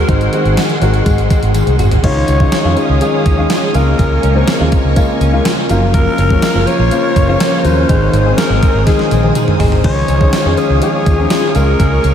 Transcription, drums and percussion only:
0.09 kick loud
0.09 closed hi-hat medium
0.21 closed hi-hat soft
0.33 closed hi-hat medium
0.33 tambourine soft
0.45 closed hi-hat soft
0.57 snare loud
0.57 closed hi-hat loud
0.57 tambourine medium
0.69 closed hi-hat medium
0.82 closed hi-hat medium
0.82 tambourine soft
0.94 closed hi-hat medium
1.06 kick medium
1.06 closed hi-hat medium
1.06 tambourine medium
1.18 closed hi-hat soft
1.30 kick medium
1.30 closed hi-hat medium
1.30 tambourine soft
1.43 closed hi-hat medium
1.54 closed hi-hat loud
1.54 high tom medium
1.54 tambourine medium
1.67 closed hi-hat medium
1.79 closed hi-hat medium
1.79 mid tom medium
1.79 tambourine medium
1.91 closed hi-hat medium
1.91 floor tom medium
2.04 kick medium
2.04 closed hi-hat medium
2.04 crash medium
2.28 closed hi-hat medium
2.28 tambourine soft
2.40 kick medium
2.52 snare loud
2.52 closed hi-hat loud
2.52 tambourine medium
2.77 closed hi-hat medium
2.77 tambourine soft
3.01 closed hi-hat loud
3.01 tambourine medium
3.26 kick medium
3.26 closed hi-hat medium
3.26 tambourine soft
3.50 snare loud
3.50 closed hi-hat loud
3.50 tambourine medium
3.74 closed hi-hat medium
3.74 tambourine medium
3.99 kick medium
3.99 closed hi-hat medium
3.99 tambourine soft
4.23 closed hi-hat medium
4.47 snare loud
4.47 closed hi-hat medium
4.47 tambourine medium
4.72 kick medium
4.72 closed hi-hat medium
4.72 tambourine soft
4.96 kick medium
4.96 closed hi-hat medium
4.96 tambourine medium
5.21 closed hi-hat medium
5.21 tambourine soft
5.45 snare loud
5.45 closed hi-hat loud
5.45 tambourine medium
5.69 closed hi-hat medium
5.69 tambourine medium
5.94 kick medium
5.94 closed hi-hat medium
6.18 closed hi-hat medium
6.18 tambourine soft
6.30 kick medium
6.42 snare loud
6.42 closed hi-hat loud
6.42 tambourine medium
6.67 closed hi-hat medium
6.67 tambourine soft
6.91 closed hi-hat loud
6.91 tambourine medium
7.16 kick medium
7.16 closed hi-hat medium
7.16 tambourine soft
7.40 snare loud
7.40 closed hi-hat loud
7.40 tambourine medium
7.65 closed hi-hat medium
7.65 tambourine medium
7.89 kick loud
7.89 closed hi-hat medium
7.89 tambourine soft
8.14 closed hi-hat medium
8.14 tambourine soft
8.38 snare loud
8.38 closed hi-hat loud
8.38 tambourine medium
8.63 kick loud
8.63 closed hi-hat medium
8.63 tambourine soft
8.87 kick medium
8.87 snare medium
8.87 closed hi-hat medium
8.87 tambourine medium
8.99 snare medium
9.11 closed hi-hat medium
9.11 high tom medium
9.11 tambourine soft
9.23 high tom medium
9.35 closed hi-hat loud
9.35 mid tom medium
9.35 tambourine medium
9.48 mid tom medium
9.60 floor tom loud
9.60 open hi-hat medium
9.60 tambourine medium
9.72 floor tom medium
9.84 kick loud
9.84 crash medium
10.08 closed hi-hat medium
10.08 tambourine soft
10.21 kick medium
10.33 snare loud
10.33 closed hi-hat medium
10.33 tambourine medium
10.57 closed hi-hat medium
10.57 tambourine soft
10.82 closed hi-hat medium
10.82 tambourine medium
11.06 kick medium
11.06 closed hi-hat medium
11.06 tambourine soft
11.30 snare loud
11.30 closed hi-hat loud
11.30 tambourine medium
11.55 closed hi-hat medium
11.55 tambourine medium
11.80 kick loud
11.80 closed hi-hat medium
11.80 tambourine soft
12.04 closed hi-hat medium
12.04 tambourine soft

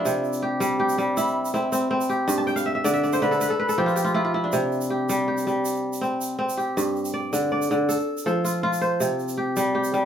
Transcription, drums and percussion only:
0.06 shaker medium
0.24 shaker soft
0.33 shaker soft
0.61 shaker medium
0.89 shaker soft
0.99 shaker soft
1.17 shaker medium
1.27 shaker soft
1.45 shaker soft
1.54 shaker soft
1.73 shaker medium
2.01 shaker soft
2.10 shaker soft
2.29 shaker medium
2.47 shaker soft
2.57 shaker soft
2.85 shaker medium
2.94 shaker soft
3.04 shaker soft
3.13 shaker soft
3.22 shaker soft
3.32 shaker soft
3.41 shaker medium
3.69 shaker soft
3.88 shaker soft
3.97 shaker medium
4.52 shaker medium
4.72 shaker soft
4.81 shaker soft
5.09 shaker medium
5.38 shaker soft
5.47 shaker soft
5.65 shaker medium
5.75 shaker soft
5.93 shaker soft
6.21 shaker medium
6.49 shaker soft
6.78 shaker medium
6.96 shaker soft
7.05 shaker soft
7.33 shaker medium
7.62 shaker soft
7.71 shaker soft
7.90 shaker medium
7.99 shaker soft
8.17 shaker soft
8.27 shaker soft
8.45 shaker medium
8.73 shaker soft
8.82 shaker soft
9.01 shaker medium
9.19 shaker soft
9.28 shaker soft
9.57 shaker medium
9.84 shaker soft

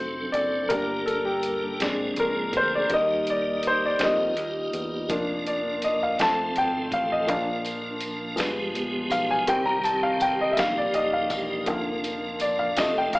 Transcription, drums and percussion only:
0.34 closed hi-hat medium
0.70 kick loud
0.70 closed hi-hat medium
1.08 closed hi-hat medium
1.43 closed hi-hat medium
1.80 snare medium
1.80 closed hi-hat medium
2.16 closed hi-hat medium
2.53 kick medium
2.53 closed hi-hat medium
2.90 kick loud
2.90 closed hi-hat medium
3.27 closed hi-hat medium
3.63 closed hi-hat medium
3.99 snare loud
3.99 closed hi-hat medium
4.37 closed hi-hat medium
4.73 closed hi-hat medium
5.10 kick loud
5.10 closed hi-hat medium
5.47 closed hi-hat soft
5.82 closed hi-hat medium
6.19 snare loud
6.19 closed hi-hat medium
6.56 closed hi-hat medium
6.92 kick medium
6.92 closed hi-hat medium
7.29 kick loud
7.29 closed hi-hat medium
7.65 closed hi-hat soft
7.65 tambourine soft
8.00 closed hi-hat medium
8.00 tambourine soft
8.37 snare loud
8.37 closed hi-hat medium
8.37 tambourine medium
8.75 closed hi-hat medium
9.11 closed hi-hat medium
9.11 tambourine medium
9.47 kick loud
9.47 closed hi-hat medium
9.84 closed hi-hat medium
9.84 tambourine soft
10.20 closed hi-hat medium
10.20 tambourine soft
10.57 snare loud
10.57 closed hi-hat medium
10.57 tambourine medium
10.94 closed hi-hat medium
11.30 kick medium
11.30 closed hi-hat medium
11.30 tambourine medium
11.66 kick loud
11.66 closed hi-hat medium
12.04 closed hi-hat medium
12.04 tambourine soft
12.40 closed hi-hat medium
12.40 tambourine soft
12.77 snare loud
12.77 closed hi-hat medium
12.77 tambourine medium
13.13 closed hi-hat medium

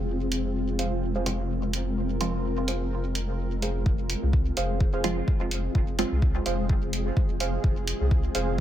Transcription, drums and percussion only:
0.32 closed hi-hat medium
0.79 closed hi-hat medium
1.26 closed hi-hat medium
1.73 closed hi-hat medium
2.21 closed hi-hat medium
2.68 closed hi-hat medium
3.15 closed hi-hat medium
3.62 closed hi-hat medium
3.86 kick loud
4.10 closed hi-hat medium
4.33 kick loud
4.57 closed hi-hat medium
4.80 kick loud
5.04 closed hi-hat medium
5.28 kick loud
5.51 closed hi-hat medium
5.75 kick loud
5.99 closed hi-hat medium
6.22 kick loud
6.46 closed hi-hat medium
6.69 kick loud
6.93 closed hi-hat medium
7.17 kick loud
7.40 closed hi-hat medium
7.64 kick loud
7.87 closed hi-hat medium
8.11 kick loud
8.35 closed hi-hat medium

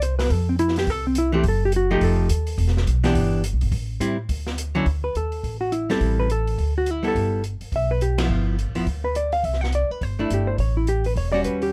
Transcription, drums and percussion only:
0.02 closed hi-hat medium
0.19 snare medium
0.19 open hi-hat soft
0.30 kick soft
0.30 open hi-hat soft
0.59 closed hi-hat soft
0.68 snare soft
0.76 snare soft
0.76 open hi-hat soft
0.87 kick soft
0.87 open hi-hat soft
1.15 closed hi-hat medium
1.44 kick soft
1.44 open hi-hat soft
1.72 closed hi-hat soft
2.01 kick soft
2.01 open hi-hat soft
2.29 closed hi-hat medium
2.47 open hi-hat soft
2.58 kick soft
2.58 open hi-hat soft
2.68 snare soft
2.77 snare soft
2.87 closed hi-hat soft
3.04 snare soft
3.04 open hi-hat soft
3.15 kick soft
3.15 open hi-hat soft
3.44 closed hi-hat medium
3.61 open hi-hat soft
3.72 kick soft
3.72 open hi-hat soft
4.01 closed hi-hat soft
4.29 kick soft
4.29 open hi-hat soft
4.47 snare soft
4.58 closed hi-hat medium
4.86 kick soft
4.86 open hi-hat soft
5.15 closed hi-hat soft
5.32 open hi-hat soft
5.43 kick soft
5.43 open hi-hat soft
5.72 closed hi-hat soft
5.90 snare soft
5.90 open hi-hat soft
6.01 kick soft
6.01 open hi-hat soft
6.30 closed hi-hat soft
6.47 open hi-hat soft
6.58 kick soft
6.58 open hi-hat soft
6.86 closed hi-hat soft
7.04 open hi-hat soft
7.15 kick soft
7.15 open hi-hat soft
7.44 closed hi-hat soft
7.61 open hi-hat soft
7.72 kick soft
7.72 open hi-hat soft
8.01 closed hi-hat soft
8.18 snare medium
8.18 ride medium
8.59 closed hi-hat soft
8.75 open hi-hat soft
8.87 kick soft
8.87 open hi-hat soft
9.15 closed hi-hat soft
9.32 open hi-hat soft
9.44 kick soft
9.44 open hi-hat soft
9.53 snare soft
9.64 snare soft
9.72 closed hi-hat soft
10.01 kick soft
10.01 open hi-hat soft
10.30 closed hi-hat soft
10.58 kick soft
10.58 open hi-hat soft
10.87 closed hi-hat soft
11.04 open hi-hat soft
11.16 kick soft
11.16 open hi-hat soft
11.44 closed hi-hat soft
11.62 open hi-hat soft

